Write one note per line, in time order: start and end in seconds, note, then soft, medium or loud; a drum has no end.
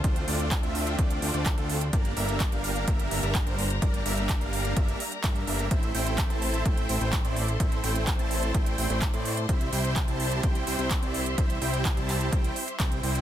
0.00 1.89 F4 medium
0.00 1.89 C5 medium
0.00 5.67 D5 medium
0.04 0.25 D2 loud
0.04 0.23 A3 medium
0.04 0.23 C4 medium
0.04 0.23 D4 medium
0.04 0.23 F4 medium
0.04 0.23 C5 loud
0.04 1.91 G5 medium
0.04 kick loud
0.04 closed hi-hat loud
0.16 closed hi-hat soft
0.28 0.61 D2 loud
0.28 0.60 A3 medium
0.28 0.60 C4 medium
0.28 0.60 D4 medium
0.28 0.60 F4 medium
0.28 0.60 D5 loud
0.28 open hi-hat loud
0.40 closed hi-hat soft
0.51 kick loud
0.51 clap loud
0.51 closed hi-hat loud
0.63 0.96 D2 loud
0.63 0.96 A3 loud
0.63 0.96 C4 medium
0.63 0.96 D4 medium
0.63 0.96 F4 medium
0.63 0.96 E5 loud
0.63 closed hi-hat soft
0.75 open hi-hat loud
0.87 closed hi-hat soft
0.99 1.20 D2 loud
0.99 1.20 A3 medium
0.99 1.20 C4 medium
0.99 1.20 D4 medium
0.99 1.20 F4 medium
0.99 1.20 D5 loud
0.99 kick loud
0.99 closed hi-hat medium
1.10 closed hi-hat soft
1.22 1.32 D2 medium
1.22 1.31 A3 medium
1.22 1.31 C4 medium
1.22 1.31 D4 medium
1.22 1.31 F4 medium
1.22 1.31 D5 medium
1.22 open hi-hat loud
1.34 1.55 D2 loud
1.34 1.52 A3 medium
1.34 1.52 C4 medium
1.34 1.52 D4 medium
1.34 1.52 F4 medium
1.34 1.52 D5 medium
1.34 closed hi-hat soft
1.46 kick loud
1.46 clap loud
1.46 closed hi-hat loud
1.58 1.91 D2 loud
1.58 1.76 A3 medium
1.58 1.76 C4 medium
1.58 1.76 D4 medium
1.58 1.76 F4 medium
1.58 1.76 A4 loud
1.58 closed hi-hat soft
1.70 open hi-hat medium
1.81 closed hi-hat soft
1.93 2.14 G1 medium
1.93 2.12 G3 loud
1.93 2.12 A#3 medium
1.93 2.12 D4 medium
1.93 5.67 G4 medium
1.93 2.12 A#4 medium
1.93 5.67 A#4 medium
1.93 2.12 D5 loud
1.93 5.67 A#5 medium
1.93 kick loud
1.93 closed hi-hat loud
2.05 closed hi-hat soft
2.17 2.50 G1 medium
2.17 2.49 G3 medium
2.17 2.49 A#3 medium
2.17 2.49 D4 medium
2.17 2.49 A#4 medium
2.17 2.49 E5 loud
2.17 open hi-hat loud
2.29 closed hi-hat soft
2.40 kick loud
2.40 clap loud
2.40 closed hi-hat medium
2.52 2.85 G1 loud
2.52 2.85 G3 loud
2.52 2.85 A#3 medium
2.52 2.85 D4 medium
2.52 2.85 A#4 medium
2.52 2.85 F5 loud
2.52 closed hi-hat soft
2.64 open hi-hat loud
2.76 closed hi-hat soft
2.88 3.09 G1 loud
2.88 3.09 G3 medium
2.88 3.09 A#3 medium
2.88 3.09 D4 medium
2.88 3.09 A#4 medium
2.88 3.09 E5 loud
2.88 kick loud
2.88 closed hi-hat medium
2.99 closed hi-hat soft
3.11 3.21 G1 medium
3.11 3.20 G3 medium
3.11 3.20 A#3 medium
3.11 3.20 D4 medium
3.11 3.20 A#4 medium
3.11 3.20 E5 medium
3.11 open hi-hat loud
3.23 3.44 G1 loud
3.23 3.41 G3 medium
3.23 3.41 A#3 medium
3.23 3.41 D4 medium
3.23 3.41 A#4 medium
3.23 3.41 E5 medium
3.23 closed hi-hat soft
3.35 kick loud
3.35 clap loud
3.35 closed hi-hat medium
3.47 3.80 G1 loud
3.47 3.65 G3 loud
3.47 3.65 A#3 medium
3.47 3.65 D4 medium
3.47 3.65 A#4 medium
3.47 3.65 C5 loud
3.47 closed hi-hat soft
3.58 open hi-hat loud
3.70 closed hi-hat soft
3.82 4.03 G1 loud
3.82 4.00 G3 medium
3.82 4.00 A#3 medium
3.82 4.00 D4 medium
3.82 4.00 A#4 medium
3.82 4.00 D5 loud
3.82 kick loud
3.82 closed hi-hat medium
3.94 closed hi-hat soft
4.06 4.39 G1 loud
4.06 4.38 G3 medium
4.06 4.38 A#3 medium
4.06 4.38 D4 medium
4.06 4.38 A#4 medium
4.06 4.38 E5 loud
4.06 open hi-hat loud
4.17 closed hi-hat soft
4.29 kick loud
4.29 clap loud
4.29 closed hi-hat medium
4.41 4.74 G1 loud
4.41 4.74 G3 loud
4.41 4.74 A#3 medium
4.41 4.74 D4 medium
4.41 4.74 A#4 medium
4.41 4.74 F5 loud
4.41 closed hi-hat soft
4.53 open hi-hat loud
4.65 closed hi-hat soft
4.76 4.95 G1 loud
4.76 4.98 G3 medium
4.76 4.98 A#3 medium
4.76 4.98 D4 medium
4.76 4.98 A#4 medium
4.76 4.98 E5 loud
4.76 kick loud
4.76 closed hi-hat medium
4.88 closed hi-hat soft
5.00 open hi-hat loud
5.12 closed hi-hat soft
5.24 5.45 G2 loud
5.24 5.42 G3 medium
5.24 5.42 A#3 medium
5.24 5.42 D4 medium
5.24 5.42 A#4 medium
5.24 5.42 E5 loud
5.24 kick loud
5.24 clap loud
5.24 closed hi-hat medium
5.36 closed hi-hat soft
5.47 5.69 G1 loud
5.47 5.66 G3 medium
5.47 5.66 A#3 medium
5.47 5.66 D4 medium
5.47 5.66 A#4 medium
5.47 5.66 E5 medium
5.47 open hi-hat loud
5.59 closed hi-hat soft
5.71 5.92 A1 loud
5.71 5.89 A3 medium
5.71 5.89 C4 medium
5.71 5.89 E4 medium
5.71 9.45 A4 medium
5.71 5.89 C5 medium
5.71 13.21 C5 medium
5.71 5.89 E5 loud
5.71 7.58 E5 medium
5.71 13.21 C6 medium
5.71 kick loud
5.71 closed hi-hat medium
5.83 closed hi-hat soft
5.95 6.28 A1 loud
5.95 6.27 A3 medium
5.95 6.27 C4 medium
5.95 6.27 E4 medium
5.95 6.27 C5 medium
5.95 6.27 G5 loud
5.95 open hi-hat loud
6.06 closed hi-hat soft
6.18 kick loud
6.18 clap loud
6.18 closed hi-hat medium
6.30 6.63 A1 loud
6.30 6.63 A3 loud
6.30 6.63 C4 medium
6.30 6.63 E4 medium
6.30 6.63 C5 medium
6.30 6.63 A5 loud
6.30 closed hi-hat soft
6.42 open hi-hat medium
6.54 closed hi-hat soft
6.66 6.87 A1 loud
6.66 6.87 A3 medium
6.66 6.87 C4 medium
6.66 6.87 E4 medium
6.66 6.87 G5 loud
6.66 kick loud
6.66 closed hi-hat medium
6.77 closed hi-hat soft
6.89 6.99 A1 medium
6.89 6.98 A3 medium
6.89 6.98 C4 medium
6.89 6.98 E4 medium
6.89 6.98 C5 medium
6.89 6.98 G5 medium
6.89 open hi-hat loud
7.01 7.22 A1 loud
7.01 7.19 A3 medium
7.01 7.19 C4 medium
7.01 7.19 E4 medium
7.01 7.19 C5 medium
7.01 7.19 G5 medium
7.01 closed hi-hat soft
7.13 kick loud
7.13 clap loud
7.13 closed hi-hat medium
7.25 7.58 A1 loud
7.25 7.43 A3 medium
7.25 7.43 C4 medium
7.25 7.43 E4 medium
7.25 7.43 C5 medium
7.25 7.43 D5 loud
7.25 closed hi-hat soft
7.36 open hi-hat medium
7.48 closed hi-hat soft
7.60 7.81 A1 loud
7.60 7.78 A3 loud
7.60 7.78 C4 medium
7.60 7.78 E4 medium
7.60 7.78 C5 medium
7.60 9.47 D5 medium
7.60 7.78 E5 loud
7.60 kick loud
7.60 closed hi-hat medium
7.72 closed hi-hat soft
7.84 8.17 A1 medium
7.84 8.16 A3 medium
7.84 8.16 C4 medium
7.84 8.16 E4 medium
7.84 8.16 C5 medium
7.84 8.16 G5 loud
7.84 open hi-hat loud
7.95 closed hi-hat soft
8.07 kick loud
8.07 clap loud
8.07 closed hi-hat medium
8.19 8.52 A1 loud
8.19 8.52 A3 loud
8.19 8.52 C4 medium
8.19 8.52 E4 medium
8.19 8.52 C5 medium
8.19 8.52 A5 loud
8.19 closed hi-hat soft
8.31 open hi-hat medium
8.43 closed hi-hat soft
8.54 8.76 A1 loud
8.54 8.76 A3 medium
8.54 8.76 C4 medium
8.54 8.76 E4 medium
8.54 8.76 C5 medium
8.54 8.76 G5 loud
8.54 kick loud
8.54 closed hi-hat medium
8.66 closed hi-hat soft
8.78 8.88 A1 loud
8.78 8.87 A3 medium
8.78 8.87 C4 medium
8.78 8.87 E4 medium
8.78 8.87 C5 medium
8.78 8.87 G5 loud
8.78 open hi-hat loud
8.90 9.11 A1 loud
8.90 9.08 A3 medium
8.90 9.08 C4 medium
8.90 9.08 E4 medium
8.90 9.08 C5 medium
8.90 9.08 G5 medium
8.90 closed hi-hat soft
9.02 kick loud
9.02 clap loud
9.02 closed hi-hat medium
9.13 9.47 A2 loud
9.13 9.32 A3 medium
9.13 9.32 C4 medium
9.13 9.32 E4 medium
9.13 9.32 C5 medium
9.13 9.32 D5 loud
9.13 closed hi-hat soft
9.25 open hi-hat medium
9.37 closed hi-hat soft
9.49 9.70 C2 loud
9.49 9.67 G3 loud
9.49 9.67 C4 medium
9.49 9.67 E4 medium
9.49 13.21 G4 medium
9.49 9.67 C5 medium
9.49 13.21 E5 medium
9.49 9.67 E5 loud
9.49 kick loud
9.49 closed hi-hat loud
9.61 closed hi-hat soft
9.73 10.06 C2 loud
9.73 10.05 G3 medium
9.73 10.05 C4 medium
9.73 10.05 E4 medium
9.73 10.05 C5 medium
9.73 10.05 G5 loud
9.73 open hi-hat loud
9.84 closed hi-hat soft
9.96 kick loud
9.96 clap loud
9.96 closed hi-hat loud
10.08 10.41 C2 loud
10.08 10.41 G3 loud
10.08 10.41 C4 medium
10.08 10.41 E4 medium
10.08 10.41 C5 medium
10.08 10.41 A5 loud
10.08 closed hi-hat soft
10.20 open hi-hat medium
10.32 closed hi-hat soft
10.43 10.65 C2 loud
10.43 10.65 G3 medium
10.43 10.65 C4 medium
10.43 10.65 E4 medium
10.43 10.65 C5 medium
10.43 10.65 G5 loud
10.43 kick loud
10.43 closed hi-hat loud
10.55 closed hi-hat soft
10.67 10.77 C2 medium
10.67 10.76 G3 medium
10.67 10.76 C4 medium
10.67 10.76 E4 medium
10.67 10.76 C5 medium
10.67 10.76 G5 medium
10.67 open hi-hat loud
10.79 11.00 C2 loud
10.79 10.97 G3 medium
10.79 10.97 C4 medium
10.79 10.97 E4 medium
10.79 10.97 C5 medium
10.79 10.97 G5 medium
10.79 closed hi-hat soft
10.91 kick loud
10.91 clap loud
10.91 closed hi-hat loud
11.02 11.36 C2 loud
11.02 11.21 G3 medium
11.02 11.21 C4 medium
11.02 11.21 E4 medium
11.02 11.21 C5 medium
11.02 11.21 D5 loud
11.02 closed hi-hat soft
11.14 open hi-hat medium
11.26 closed hi-hat soft
11.38 11.59 C2 loud
11.38 11.56 G3 loud
11.38 11.56 C4 medium
11.38 11.56 E4 medium
11.38 11.56 C5 medium
11.38 11.56 E5 loud
11.38 kick loud
11.38 closed hi-hat loud
11.50 closed hi-hat soft
11.62 11.95 C2 loud
11.62 11.94 G3 medium
11.62 11.94 C4 medium
11.62 11.94 E4 medium
11.62 11.94 C5 medium
11.62 11.94 G5 loud
11.62 open hi-hat loud
11.73 closed hi-hat soft
11.85 kick loud
11.85 clap loud
11.85 closed hi-hat loud
11.97 12.30 C2 loud
11.97 12.30 G3 loud
11.97 12.30 C4 medium
11.97 12.30 E4 medium
11.97 12.30 C5 medium
11.97 12.30 A5 loud
11.97 closed hi-hat soft
12.09 clap soft
12.09 open hi-hat medium
12.21 closed hi-hat soft
12.32 12.51 C2 loud
12.32 12.54 G3 medium
12.32 12.54 C4 medium
12.32 12.54 E4 medium
12.32 12.54 C5 medium
12.32 12.54 G5 loud
12.32 kick loud
12.32 closed hi-hat loud
12.44 closed hi-hat soft
12.56 open hi-hat loud
12.68 closed hi-hat soft
12.80 13.01 C2 loud
12.80 12.98 G3 medium
12.80 12.98 C4 medium
12.80 12.98 E4 medium
12.80 12.98 C5 medium
12.80 12.98 G5 loud
12.80 kick loud
12.80 clap loud
12.80 closed hi-hat loud
12.92 closed hi-hat soft
13.03 13.21 C2 loud
13.03 13.21 G3 medium
13.03 13.21 C4 medium
13.03 13.21 E4 medium
13.03 13.21 C5 medium
13.03 13.21 G5 medium
13.03 open hi-hat medium
13.15 closed hi-hat soft